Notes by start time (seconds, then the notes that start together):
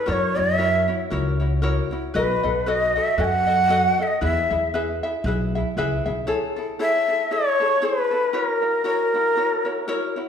Already playing: B4
0.06 F#2 E4 F#4 A#4 C#5 D5
0.13 C#5
0.35 F#2 E4 F#4 C#5
0.39 E5
0.58 E4 F#4 A#4 C#5
0.88 E4 F#4 C#5
1.10 C#2 E4 F#4 A#4 C#5
1.40 E4 F#4 C#5
1.62 E4 F#4 A#4 C#5
1.91 E4 F#4 C#5
2.14 B1 F#4 A4 B4 D#5
2.43 B1 F#4 A4 D#5
2.66 F#4 A4 B4 D#5
2.96 F#4 A4 D#5 E5
3.18 F#2 F#4 A4 B4 D#5 G#5
3.24 F#5
3.47 F#4 A4 D#5
3.69 F#4 A4 B4 D#5
3.99 F#4 A4 D#5 E5
4.07 D#5
4.21 E2 E4 G#4 B4 E5
4.50 E2 E4 G#4 E5
4.74 E4 G#4 B4 E5
5.03 E4 G#4 E5
5.24 B1 E4 G#4 B4
5.28 E5
5.55 E4 G#4 E5
5.77 C#2 E4 G#4 B4 E5
6.06 B1 E4 G#4 E5
6.27 E4 G#4 A4 C#5
6.56 E4 G#4 A4
6.79 E4 G#4 A4 C#5 E5
7.08 E4 G#4 A4
7.31 E4 G#4 A4 C#5
7.60 E4 G#4 A4
7.82 E4 G#4 A4 B4 C#5
8.11 E4 G#4 A4
8.33 E4 F#4 A#4 C#5
8.62 E4 F#4 C#5
8.84 E4 F#4 A#4 C#5
9.14 E4 F#4 C#5
9.35 E4 F#4 A#4 C#5
9.65 E4 F#4 C#5
9.88 E4 F#4 A#4 C#5
10.16 E4 F#4 C#5